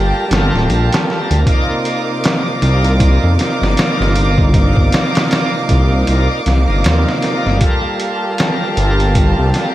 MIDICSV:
0, 0, Header, 1, 5, 480
1, 0, Start_track
1, 0, Tempo, 769231
1, 912, Time_signature, 4, 2, 24, 8
1, 6082, End_track
2, 0, Start_track
2, 0, Title_t, "Violin section"
2, 0, Program_c, 0, 48
2, 0, Note_on_c, 0, 58, 74
2, 0, Note_on_c, 0, 67, 84
2, 0, Note_on_c, 0, 79, 75
2, 0, Note_on_c, 0, 81, 90
2, 884, Note_off_c, 0, 67, 0
2, 884, Note_off_c, 0, 81, 0
2, 890, Note_off_c, 0, 79, 0
2, 912, Note_on_c, 0, 86, 93
2, 916, Note_on_c, 0, 63, 80
2, 918, Note_on_c, 0, 77, 72
2, 4727, Note_off_c, 0, 86, 0
2, 4729, Note_off_c, 0, 63, 0
2, 4745, Note_on_c, 0, 81, 88
2, 4749, Note_on_c, 0, 67, 81
2, 6082, Note_off_c, 0, 58, 0
2, 6082, Note_off_c, 0, 67, 0
2, 6082, Note_off_c, 0, 77, 0
2, 6082, Note_off_c, 0, 81, 0
2, 6082, End_track
3, 0, Start_track
3, 0, Title_t, "Tonewheel organ"
3, 0, Program_c, 1, 16
3, 0, Note_on_c, 1, 55, 75
3, 0, Note_on_c, 1, 65, 68
3, 0, Note_on_c, 1, 69, 71
3, 0, Note_on_c, 1, 70, 83
3, 157, Note_off_c, 1, 55, 0
3, 166, Note_off_c, 1, 65, 0
3, 175, Note_off_c, 1, 69, 0
3, 175, Note_on_c, 1, 55, 78
3, 184, Note_off_c, 1, 70, 0
3, 194, Note_on_c, 1, 65, 76
3, 212, Note_on_c, 1, 69, 74
3, 229, Note_on_c, 1, 70, 91
3, 879, Note_off_c, 1, 55, 0
3, 889, Note_off_c, 1, 65, 0
3, 893, Note_on_c, 1, 48, 82
3, 898, Note_off_c, 1, 69, 0
3, 906, Note_on_c, 1, 58, 67
3, 907, Note_off_c, 1, 70, 0
3, 920, Note_on_c, 1, 63, 70
3, 931, Note_on_c, 1, 65, 73
3, 948, Note_on_c, 1, 74, 83
3, 2078, Note_off_c, 1, 48, 0
3, 2085, Note_off_c, 1, 58, 0
3, 2089, Note_on_c, 1, 48, 81
3, 2092, Note_off_c, 1, 63, 0
3, 2098, Note_off_c, 1, 65, 0
3, 2103, Note_on_c, 1, 58, 77
3, 2106, Note_off_c, 1, 74, 0
3, 2116, Note_on_c, 1, 63, 73
3, 2129, Note_on_c, 1, 65, 74
3, 2144, Note_on_c, 1, 74, 88
3, 2796, Note_off_c, 1, 48, 0
3, 2803, Note_off_c, 1, 58, 0
3, 2810, Note_off_c, 1, 63, 0
3, 2813, Note_on_c, 1, 48, 75
3, 2817, Note_off_c, 1, 65, 0
3, 2824, Note_off_c, 1, 74, 0
3, 2826, Note_on_c, 1, 58, 67
3, 2840, Note_on_c, 1, 63, 71
3, 2854, Note_on_c, 1, 65, 76
3, 2866, Note_on_c, 1, 74, 83
3, 3998, Note_off_c, 1, 48, 0
3, 4005, Note_off_c, 1, 58, 0
3, 4012, Note_off_c, 1, 63, 0
3, 4019, Note_off_c, 1, 65, 0
3, 4025, Note_off_c, 1, 74, 0
3, 4155, Note_on_c, 1, 48, 85
3, 4167, Note_on_c, 1, 58, 80
3, 4181, Note_on_c, 1, 63, 77
3, 4195, Note_on_c, 1, 65, 79
3, 4207, Note_on_c, 1, 74, 97
3, 4719, Note_off_c, 1, 48, 0
3, 4725, Note_off_c, 1, 58, 0
3, 4727, Note_on_c, 1, 55, 76
3, 4732, Note_off_c, 1, 63, 0
3, 4739, Note_off_c, 1, 65, 0
3, 4745, Note_off_c, 1, 74, 0
3, 4748, Note_on_c, 1, 65, 66
3, 4766, Note_on_c, 1, 69, 71
3, 4784, Note_on_c, 1, 70, 87
3, 5916, Note_off_c, 1, 55, 0
3, 5926, Note_off_c, 1, 65, 0
3, 5930, Note_on_c, 1, 55, 86
3, 5935, Note_off_c, 1, 69, 0
3, 5944, Note_off_c, 1, 70, 0
3, 5948, Note_on_c, 1, 65, 75
3, 5967, Note_on_c, 1, 69, 76
3, 5983, Note_on_c, 1, 70, 85
3, 6082, Note_off_c, 1, 55, 0
3, 6082, Note_off_c, 1, 65, 0
3, 6082, Note_off_c, 1, 69, 0
3, 6082, Note_off_c, 1, 70, 0
3, 6082, End_track
4, 0, Start_track
4, 0, Title_t, "Detuned saw bass"
4, 0, Program_c, 2, 39
4, 0, Note_on_c, 2, 31, 95
4, 77, Note_off_c, 2, 31, 0
4, 193, Note_on_c, 2, 31, 105
4, 316, Note_off_c, 2, 31, 0
4, 338, Note_on_c, 2, 26, 90
4, 422, Note_off_c, 2, 26, 0
4, 435, Note_on_c, 2, 34, 80
4, 557, Note_off_c, 2, 34, 0
4, 815, Note_on_c, 2, 38, 96
4, 901, Note_off_c, 2, 38, 0
4, 1636, Note_on_c, 2, 36, 101
4, 1988, Note_off_c, 2, 36, 0
4, 2017, Note_on_c, 2, 41, 98
4, 2102, Note_off_c, 2, 41, 0
4, 2256, Note_on_c, 2, 31, 85
4, 2342, Note_off_c, 2, 31, 0
4, 2497, Note_on_c, 2, 31, 79
4, 3055, Note_off_c, 2, 31, 0
4, 3552, Note_on_c, 2, 36, 100
4, 3768, Note_off_c, 2, 36, 0
4, 3794, Note_on_c, 2, 36, 108
4, 3917, Note_off_c, 2, 36, 0
4, 4032, Note_on_c, 2, 36, 102
4, 4156, Note_off_c, 2, 36, 0
4, 4173, Note_on_c, 2, 31, 85
4, 4260, Note_off_c, 2, 31, 0
4, 4275, Note_on_c, 2, 39, 79
4, 4397, Note_off_c, 2, 39, 0
4, 4654, Note_on_c, 2, 31, 93
4, 4740, Note_off_c, 2, 31, 0
4, 5474, Note_on_c, 2, 31, 105
4, 5827, Note_off_c, 2, 31, 0
4, 5856, Note_on_c, 2, 36, 98
4, 5941, Note_off_c, 2, 36, 0
4, 6082, End_track
5, 0, Start_track
5, 0, Title_t, "Drums"
5, 194, Note_on_c, 9, 42, 81
5, 204, Note_on_c, 9, 38, 102
5, 256, Note_off_c, 9, 42, 0
5, 267, Note_off_c, 9, 38, 0
5, 347, Note_on_c, 9, 38, 33
5, 409, Note_off_c, 9, 38, 0
5, 436, Note_on_c, 9, 42, 62
5, 499, Note_off_c, 9, 42, 0
5, 578, Note_on_c, 9, 42, 80
5, 588, Note_on_c, 9, 38, 103
5, 640, Note_off_c, 9, 42, 0
5, 651, Note_off_c, 9, 38, 0
5, 687, Note_on_c, 9, 38, 33
5, 750, Note_off_c, 9, 38, 0
5, 817, Note_on_c, 9, 42, 60
5, 879, Note_off_c, 9, 42, 0
5, 915, Note_on_c, 9, 36, 109
5, 916, Note_on_c, 9, 42, 82
5, 977, Note_off_c, 9, 36, 0
5, 978, Note_off_c, 9, 42, 0
5, 1156, Note_on_c, 9, 42, 71
5, 1218, Note_off_c, 9, 42, 0
5, 1397, Note_on_c, 9, 42, 81
5, 1407, Note_on_c, 9, 38, 110
5, 1459, Note_off_c, 9, 42, 0
5, 1470, Note_off_c, 9, 38, 0
5, 1636, Note_on_c, 9, 42, 67
5, 1699, Note_off_c, 9, 42, 0
5, 1775, Note_on_c, 9, 42, 43
5, 1838, Note_off_c, 9, 42, 0
5, 1873, Note_on_c, 9, 42, 91
5, 1874, Note_on_c, 9, 36, 112
5, 1936, Note_off_c, 9, 36, 0
5, 1936, Note_off_c, 9, 42, 0
5, 2116, Note_on_c, 9, 42, 67
5, 2126, Note_on_c, 9, 38, 43
5, 2178, Note_off_c, 9, 42, 0
5, 2189, Note_off_c, 9, 38, 0
5, 2267, Note_on_c, 9, 38, 50
5, 2330, Note_off_c, 9, 38, 0
5, 2354, Note_on_c, 9, 42, 83
5, 2365, Note_on_c, 9, 38, 116
5, 2417, Note_off_c, 9, 42, 0
5, 2427, Note_off_c, 9, 38, 0
5, 2508, Note_on_c, 9, 38, 43
5, 2570, Note_off_c, 9, 38, 0
5, 2593, Note_on_c, 9, 42, 65
5, 2655, Note_off_c, 9, 42, 0
5, 2734, Note_on_c, 9, 36, 92
5, 2796, Note_off_c, 9, 36, 0
5, 2832, Note_on_c, 9, 36, 109
5, 2833, Note_on_c, 9, 42, 83
5, 2894, Note_off_c, 9, 36, 0
5, 2895, Note_off_c, 9, 42, 0
5, 2973, Note_on_c, 9, 36, 88
5, 3035, Note_off_c, 9, 36, 0
5, 3073, Note_on_c, 9, 42, 79
5, 3083, Note_on_c, 9, 38, 111
5, 3135, Note_off_c, 9, 42, 0
5, 3146, Note_off_c, 9, 38, 0
5, 3215, Note_on_c, 9, 42, 76
5, 3226, Note_on_c, 9, 38, 109
5, 3278, Note_off_c, 9, 42, 0
5, 3288, Note_off_c, 9, 38, 0
5, 3313, Note_on_c, 9, 42, 80
5, 3324, Note_on_c, 9, 38, 112
5, 3376, Note_off_c, 9, 42, 0
5, 3386, Note_off_c, 9, 38, 0
5, 3550, Note_on_c, 9, 42, 69
5, 3551, Note_on_c, 9, 36, 95
5, 3613, Note_off_c, 9, 36, 0
5, 3613, Note_off_c, 9, 42, 0
5, 3790, Note_on_c, 9, 42, 84
5, 3852, Note_off_c, 9, 42, 0
5, 4032, Note_on_c, 9, 42, 66
5, 4042, Note_on_c, 9, 38, 45
5, 4094, Note_off_c, 9, 42, 0
5, 4105, Note_off_c, 9, 38, 0
5, 4270, Note_on_c, 9, 42, 94
5, 4281, Note_on_c, 9, 38, 126
5, 4332, Note_off_c, 9, 42, 0
5, 4343, Note_off_c, 9, 38, 0
5, 4421, Note_on_c, 9, 38, 49
5, 4483, Note_off_c, 9, 38, 0
5, 4508, Note_on_c, 9, 42, 64
5, 4519, Note_on_c, 9, 38, 45
5, 4570, Note_off_c, 9, 42, 0
5, 4581, Note_off_c, 9, 38, 0
5, 4659, Note_on_c, 9, 38, 35
5, 4722, Note_off_c, 9, 38, 0
5, 4747, Note_on_c, 9, 42, 88
5, 4749, Note_on_c, 9, 36, 104
5, 4809, Note_off_c, 9, 42, 0
5, 4811, Note_off_c, 9, 36, 0
5, 4990, Note_on_c, 9, 42, 71
5, 5052, Note_off_c, 9, 42, 0
5, 5231, Note_on_c, 9, 42, 80
5, 5241, Note_on_c, 9, 38, 107
5, 5293, Note_off_c, 9, 42, 0
5, 5304, Note_off_c, 9, 38, 0
5, 5473, Note_on_c, 9, 42, 66
5, 5536, Note_off_c, 9, 42, 0
5, 5616, Note_on_c, 9, 42, 44
5, 5678, Note_off_c, 9, 42, 0
5, 5711, Note_on_c, 9, 42, 89
5, 5712, Note_on_c, 9, 36, 110
5, 5773, Note_off_c, 9, 42, 0
5, 5774, Note_off_c, 9, 36, 0
5, 5953, Note_on_c, 9, 42, 68
5, 5963, Note_on_c, 9, 38, 44
5, 6015, Note_off_c, 9, 42, 0
5, 6026, Note_off_c, 9, 38, 0
5, 6082, End_track
0, 0, End_of_file